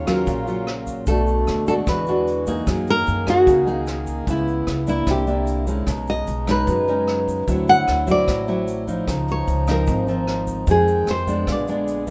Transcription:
Already playing: D#2 C#3 D#3 F#3 F4
0.07 F#3 C#4 F4 A#4, kick, cross-stick, closed hi-hat, shaker
0.27 A#1 A#2, kick, closed hi-hat, shaker
0.47 F#3 C#4 F4, closed hi-hat, shaker
0.67 cross-stick, closed hi-hat
0.87 kick, closed hi-hat, shaker
1.06 B1 B2 A3 D4 F#4 A4, kick, closed hi-hat, shaker
1.27 closed hi-hat, shaker
1.47 D2, cross-stick, closed hi-hat, shaker
1.67 G#3 D4 F#4 A4, kick, closed hi-hat, shaker
1.87 E2 D3 E3 G#3 F#4 B4, kick, cross-stick, closed hi-hat, shaker
2.06 G#3 D4 F#4, closed hi-hat, shaker
2.27 closed hi-hat
2.47 A#3 D#4 G#4, kick, closed hi-hat, shaker
2.67 F#2 D#3 F#3 A#3 G#4, kick, cross-stick, closed hi-hat, shaker
2.87 A#4, closed hi-hat, shaker
3.07 F#2, closed hi-hat, shaker
3.27 A#3 D#4 F#4 G#4, kick, cross-stick, closed hi-hat, shaker
3.46 C#2 C#3, kick, closed hi-hat, shaker
3.66 A#3 D#4 G#4, closed hi-hat, shaker
3.87 cross-stick, closed hi-hat, shaker
4.07 kick, closed hi-hat, shaker
4.27 C#2 C#3 G#3 B3 E4, kick, closed hi-hat, shaker
4.47 closed hi-hat, shaker
4.67 C#2, cross-stick, closed hi-hat, shaker
4.87 A#3 D4 E4, kick, closed hi-hat, shaker
5.07 C2 C3 D3 A#3 G4, kick, cross-stick, closed hi-hat, shaker
5.27 A#3 D4 E4, closed hi-hat, shaker
5.47 closed hi-hat, shaker
5.67 G#3 C#4 D#4, kick, closed hi-hat, shaker
5.87 B1 B2 C#3 G#3 D#4, kick, cross-stick, closed hi-hat, shaker
6.07 D#5, closed hi-hat, shaker
6.27 B1, closed hi-hat, shaker
6.47 G#3 C#4 D#4 B4, kick, cross-stick, closed hi-hat, shaker
6.67 F#2 F#3, kick, closed hi-hat, shaker
6.87 G#3 C#4 D#4, closed hi-hat, shaker
7.08 cross-stick, closed hi-hat
7.28 kick, closed hi-hat, shaker
7.47 D2 D3 F#3 C4 E4, kick, closed hi-hat, shaker
7.67 F#5, closed hi-hat, shaker
7.88 D2, cross-stick, closed hi-hat, shaker
8.07 F#3 C4 E4, kick, closed hi-hat, shaker
8.11 D5
8.28 A1 A2, kick, cross-stick, closed hi-hat, shaker
8.47 F#3 C4 E4, closed hi-hat, shaker
8.68 closed hi-hat, shaker
8.87 F3 D#4, kick, closed hi-hat, shaker
9.07 C#2 C#3 F3 D#4, kick, cross-stick, closed hi-hat, shaker
9.28 C#5, closed hi-hat, shaker
9.47 C#2, closed hi-hat, shaker
9.67 F3 C4 D#4 A#4, kick, cross-stick, closed hi-hat, shaker
9.87 G#1 G#2, kick, closed hi-hat, shaker
10.07 F3 C4 D#4, closed hi-hat, shaker
10.27 cross-stick, closed hi-hat
10.47 kick, closed hi-hat, shaker
10.67 F2 D#3 F3 G#3 D#4 G5, kick, closed hi-hat, shaker
10.71 G#4
10.87 closed hi-hat, shaker
11.07 F2 C5, cross-stick, closed hi-hat, shaker
11.27 G#3 B3 D4, kick, closed hi-hat, shaker
11.47 A#1 A#2 D3 B3 G#4, kick, cross-stick, closed hi-hat, shaker
11.52 D5
11.67 G#3 B3 D4, closed hi-hat, shaker
11.87 closed hi-hat, shaker
12.07 G3, kick

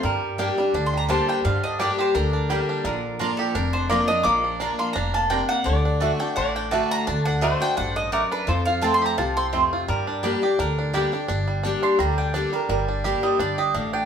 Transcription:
0.03 G2 G3 A#4
0.38 G3 A#3 D4 G4 D5 G5
0.57 G3 D4 G4
0.74 D2 D3 D4
0.86 C6
0.94 G3 A#5
1.08 G3 A#3 D4 G4 C5 D5 G5 A5
1.29 G3 G5
1.45 G2 D3 F5
1.64 D4 D#5
1.79 G3 A#3 D4 G4 D5 G5
1.99 G4 C5
2.15 D2 D3 D4 A#4
2.33 D4
2.49 G3 A#3 D4 G4 D5 G5
2.69 D4
2.84 A#1 A#2 D3 A#4
3.19 F3 A#3 D4 F4 D5 A#5
3.37 G4 A4
3.55 F1 F2 D4 A#4
3.73 D4 C5
3.89 F3 A#3 D4 F4 D5 A#5
4.08 D4 F4 D#5
4.23 A#1 A#2 A#3 A#4 D6
4.44 D4
4.60 F3 A#3 D4 F4 D5 A#5
4.79 A#3 C6
4.93 F1 A#2 D4 A#5
5.14 A#3 A5
5.30 C3 A#3 D4 F4 D5 G5 A#5
5.49 A#3 F#5
5.64 D2 D3 D4 D5
5.85 D4
6.00 D3 A3 D4 F#4 D5 F#5
6.20 D4 F#4 G5
6.36 A1 A2 D4 D5 F#5
6.56 D4 G5
6.71 D3 A3 D4 F#4 D5 F#5 A5
6.91 D4 A#5
7.07 D2 D3 D4 A5
7.25 D4 F#5
7.41 D3 A3 D4 F#4 C5 D5 D#5 F#5
7.60 D4 F#4 G5
7.77 A1 G2 D4 F#5
7.96 D4 D#5
8.12 F#2 A3 F#4 A#4 D5 F#5
8.31 D4 B4
8.47 F2 F3 A4 C5
8.66 F4 F5
8.81 F3 A3 C4 F4 C5 A5
8.94 C6
9.02 G4
9.06 A#5
9.18 C2 C3 F4 A5
9.37 C4 C6
9.52 F2 A3 C4 F4 C5 A5
9.73 F4
9.88 G2 G3 A#4
10.07 D4
10.23 G3 A#3 D4 G4 D5 G5
10.42 D4 G4
10.59 D2 D3 D4 A#4
10.79 D4
10.93 G3 A#3 D4 G4 D5 G5
11.12 D4 G4
11.28 G1 G2 D4
11.48 G3
11.63 G3 A#3 D4 G4
11.83 D4 C6
11.99 D2 D3 G3 A#5
12.18 D4 G5
12.34 G3 A#3 D4 G4 D5
12.53 G3 D4 G4 A#4
12.69 G1 G2 G3 A#4
12.88 D4
13.04 G3 A#3 D4 G4
13.23 G3 D#5
13.39 G1 G2 D4 D5
13.58 G4 D#5
13.74 A1 A2 D4 F5
13.93 D4 G5

